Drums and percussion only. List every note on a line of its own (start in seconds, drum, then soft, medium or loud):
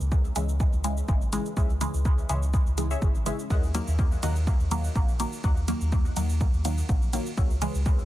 0.00 cabasa soft
0.12 kick loud
0.12 cabasa soft
0.25 cabasa soft
0.36 closed hi-hat medium
0.36 cabasa medium
0.49 cabasa soft
0.60 kick loud
0.60 cabasa soft
0.73 cabasa soft
0.84 closed hi-hat medium
0.84 cabasa medium
0.97 cabasa soft
1.08 kick loud
1.08 cabasa soft
1.21 cabasa soft
1.33 closed hi-hat medium
1.33 cabasa medium
1.46 cabasa soft
1.57 kick loud
1.57 cabasa soft
1.70 cabasa soft
1.81 closed hi-hat medium
1.81 cabasa medium
1.94 cabasa soft
2.05 kick loud
2.05 cabasa soft
2.18 cabasa soft
2.29 closed hi-hat medium
2.29 cabasa medium
2.42 cabasa soft
2.54 kick loud
2.54 cabasa soft
2.67 cabasa soft
2.78 closed hi-hat medium
2.78 cabasa medium
2.91 cabasa soft
3.02 kick loud
3.02 cabasa soft
3.15 cabasa soft
3.26 closed hi-hat medium
3.26 cabasa medium
3.39 cabasa soft
3.50 kick loud
3.50 ride soft
3.50 cabasa soft
3.63 cabasa soft
3.75 closed hi-hat medium
3.75 ride medium
3.75 cabasa medium
3.88 cabasa soft
3.99 kick loud
3.99 ride soft
3.99 cabasa soft
4.12 cabasa soft
4.23 closed hi-hat medium
4.23 ride medium
4.23 cabasa medium
4.36 cabasa soft
4.47 kick loud
4.47 ride soft
4.47 cabasa soft
4.60 cabasa soft
4.71 closed hi-hat medium
4.71 ride medium
4.71 cabasa medium
4.84 cabasa soft
4.96 kick loud
4.96 ride soft
4.96 cabasa soft
5.08 cabasa soft
5.20 closed hi-hat medium
5.20 ride medium
5.20 cabasa medium
5.33 cabasa soft
5.44 kick loud
5.44 ride soft
5.44 cabasa soft
5.57 cabasa soft
5.68 closed hi-hat medium
5.68 ride medium
5.68 cabasa medium
5.81 cabasa soft
5.92 kick loud
5.92 ride soft
5.92 cabasa soft
6.05 cabasa soft
6.16 closed hi-hat medium
6.16 ride medium
6.16 cabasa medium
6.29 cabasa soft
6.41 kick loud
6.41 ride soft
6.41 cabasa soft
6.54 cabasa soft
6.65 closed hi-hat medium
6.65 ride medium
6.65 cabasa medium
6.78 cabasa soft
6.89 kick loud
6.89 ride soft
6.89 cabasa soft
7.02 cabasa soft
7.13 closed hi-hat medium
7.13 ride medium
7.13 cabasa medium
7.26 cabasa soft
7.37 kick loud
7.37 ride soft
7.37 cabasa soft
7.50 cabasa soft
7.62 closed hi-hat medium
7.62 ride medium
7.62 cabasa medium
7.75 cabasa soft
7.86 kick loud
7.86 ride soft
7.86 cabasa soft
7.99 cabasa soft